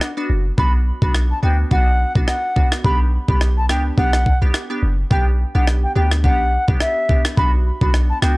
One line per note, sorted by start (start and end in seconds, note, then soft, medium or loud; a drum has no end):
0.01 cross-stick medium
0.17 0.35 B3 medium
0.17 0.36 D4 medium
0.17 0.36 F#4 medium
0.30 0.51 F#1 medium
0.58 0.92 B1 loud
0.58 0.78 B3 medium
0.58 0.78 D4 medium
0.58 0.79 F#4 loud
0.58 0.72 B5 loud
0.58 kick loud
1.02 1.33 B1 loud
1.02 1.40 B3 medium
1.02 1.40 D4 medium
1.02 1.40 F#4 medium
1.02 1.13 B5 medium
1.02 kick medium
1.15 cross-stick medium
1.31 1.42 A5 medium
1.43 1.65 D2 medium
1.43 1.69 B3 medium
1.43 1.69 D4 medium
1.43 1.69 F#4 medium
1.43 1.57 G5 medium
1.71 2.05 B1 loud
1.71 1.92 B3 medium
1.71 1.92 D4 medium
1.71 1.92 F#4 loud
1.71 2.13 F#5 medium
1.71 kick loud
2.15 2.25 B1 medium
2.15 2.34 B3 medium
2.15 2.34 D4 medium
2.15 2.34 F#4 medium
2.15 kick loud
2.28 2.69 F#5 medium
2.28 cross-stick medium
2.56 2.76 B3 medium
2.56 2.77 D4 medium
2.56 2.77 F#4 medium
2.56 kick loud
2.72 cross-stick loud
2.84 3.18 B1 loud
2.84 3.05 B3 medium
2.84 3.05 D4 medium
2.84 3.05 G4 loud
2.84 2.99 B5 loud
2.84 kick loud
3.28 3.71 B1 loud
3.28 3.66 B3 medium
3.28 3.66 D4 medium
3.28 3.67 G4 medium
3.28 3.40 B5 medium
3.28 kick medium
3.41 cross-stick medium
3.57 3.68 A5 medium
3.69 3.91 C#2 medium
3.69 3.96 B3 medium
3.69 3.96 D4 medium
3.69 3.96 G4 medium
3.69 3.84 G5 medium
3.69 cross-stick loud
3.97 4.31 B1 loud
3.97 4.18 B3 medium
3.97 4.18 D4 medium
3.97 4.18 G4 loud
3.97 4.39 F#5 medium
3.97 kick medium
4.13 cross-stick medium
4.26 kick medium
4.42 4.51 B1 medium
4.42 4.60 B3 medium
4.42 4.60 D4 medium
4.42 4.60 G4 medium
4.54 cross-stick loud
4.70 4.88 B3 medium
4.70 4.88 D4 medium
4.70 4.89 G4 medium
4.83 5.04 F#1 loud
5.11 5.45 B1 loud
5.11 5.31 B3 loud
5.11 5.31 D4 medium
5.11 5.31 G4 loud
5.11 5.25 G5 medium
5.11 kick loud
5.55 5.86 B1 loud
5.55 5.93 B3 medium
5.55 5.93 D4 medium
5.55 5.93 G4 medium
5.55 5.66 F#5 medium
5.67 cross-stick medium
5.83 5.94 G5 medium
5.96 6.26 D2 medium
5.96 6.22 B3 medium
5.96 6.22 D4 medium
5.96 6.22 G4 medium
5.96 6.10 G5 medium
6.12 cross-stick medium
6.24 6.58 B1 loud
6.24 6.44 B3 medium
6.24 6.45 D4 medium
6.24 6.45 G4 loud
6.24 6.66 F#5 loud
6.24 kick medium
6.68 6.78 B1 medium
6.68 7.06 B3 medium
6.68 7.06 D4 medium
6.68 7.06 G4 medium
6.68 kick loud
6.80 7.22 E5 medium
6.80 cross-stick loud
7.09 7.35 B3 medium
7.09 7.35 D4 medium
7.09 7.36 G4 medium
7.09 kick loud
7.25 cross-stick loud
7.37 7.71 B1 loud
7.37 7.58 B3 medium
7.37 7.58 D4 medium
7.37 7.58 F#4 loud
7.37 7.51 B5 loud
7.37 kick loud
7.81 8.12 B1 loud
7.81 8.19 B3 medium
7.81 8.19 D4 medium
7.81 8.19 F#4 medium
7.81 7.92 B5 medium
7.81 kick loud
7.94 cross-stick medium
8.10 8.21 A5 medium
8.22 8.37 C#2 medium
8.22 8.37 B3 medium
8.22 8.37 D4 medium
8.22 8.37 F#4 medium
8.22 8.36 G5 medium
8.22 cross-stick loud